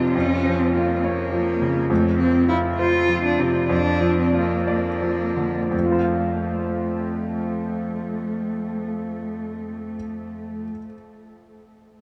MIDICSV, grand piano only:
0, 0, Header, 1, 2, 480
1, 0, Start_track
1, 0, Key_signature, -1, "major"
1, 0, Tempo, 588235
1, 121, Time_signature, 6, 3, 24, 8
1, 2520, Tempo, 630915
1, 3480, Tempo, 699301
1, 8738, End_track
2, 0, Start_track
2, 0, Title_t, "Grand piano"
2, 0, Program_c, 0, 0
2, 0, Control_c, 0, 64, 127
2, 0, Note_on_c, 0, 41, 43
2, 0, Note_on_c, 0, 48, 31
2, 0, Note_on_c, 0, 53, 36
2, 0, Note_on_c, 0, 65, 35
2, 0, Note_on_c, 0, 75, 35
2, 92, Note_off_c, 0, 41, 0
2, 123, Note_off_c, 0, 48, 0
2, 125, Note_on_c, 0, 41, 41
2, 135, Control_c, 0, 64, 0
2, 138, Note_off_c, 0, 65, 0
2, 138, Note_off_c, 0, 75, 0
2, 139, Note_off_c, 0, 53, 0
2, 269, Control_c, 0, 64, 127
2, 365, Note_on_c, 0, 53, 38
2, 605, Note_on_c, 0, 65, 37
2, 745, Note_off_c, 0, 53, 0
2, 850, Note_on_c, 0, 73, 34
2, 981, Note_off_c, 0, 65, 0
2, 1074, Note_on_c, 0, 53, 40
2, 1222, Note_off_c, 0, 73, 0
2, 1318, Note_on_c, 0, 49, 34
2, 1454, Note_off_c, 0, 53, 0
2, 1519, Note_off_c, 0, 41, 0
2, 1551, Note_on_c, 0, 41, 47
2, 1553, Note_off_c, 0, 49, 0
2, 1565, Control_c, 0, 64, 0
2, 1678, Control_c, 0, 64, 127
2, 1797, Note_on_c, 0, 53, 36
2, 2027, Note_on_c, 0, 65, 41
2, 2181, Note_off_c, 0, 53, 0
2, 2279, Note_on_c, 0, 72, 36
2, 2420, Note_off_c, 0, 65, 0
2, 2516, Note_on_c, 0, 53, 39
2, 2662, Note_off_c, 0, 72, 0
2, 2750, Note_on_c, 0, 48, 35
2, 2892, Note_off_c, 0, 53, 0
2, 2960, Note_off_c, 0, 41, 0
2, 2981, Note_on_c, 0, 41, 39
2, 2988, Note_off_c, 0, 48, 0
2, 3005, Control_c, 0, 64, 0
2, 3150, Control_c, 0, 64, 127
2, 3220, Note_on_c, 0, 53, 36
2, 3473, Note_on_c, 0, 65, 36
2, 3612, Note_off_c, 0, 53, 0
2, 3702, Note_on_c, 0, 74, 35
2, 3846, Note_off_c, 0, 65, 0
2, 3940, Note_on_c, 0, 53, 30
2, 4084, Note_off_c, 0, 74, 0
2, 4177, Note_on_c, 0, 50, 24
2, 4328, Note_off_c, 0, 53, 0
2, 4394, Note_off_c, 0, 41, 0
2, 4416, Note_on_c, 0, 41, 29
2, 4422, Note_off_c, 0, 50, 0
2, 4442, Control_c, 0, 64, 0
2, 4462, Note_on_c, 0, 53, 28
2, 4513, Note_on_c, 0, 65, 29
2, 4559, Note_on_c, 0, 72, 29
2, 4589, Control_c, 0, 64, 127
2, 4608, Note_on_c, 0, 77, 32
2, 7331, Control_c, 0, 64, 0
2, 7801, Note_off_c, 0, 41, 0
2, 7846, Note_off_c, 0, 53, 0
2, 7897, Note_off_c, 0, 65, 0
2, 7943, Note_off_c, 0, 72, 0
2, 7992, Note_off_c, 0, 77, 0
2, 8738, End_track
0, 0, End_of_file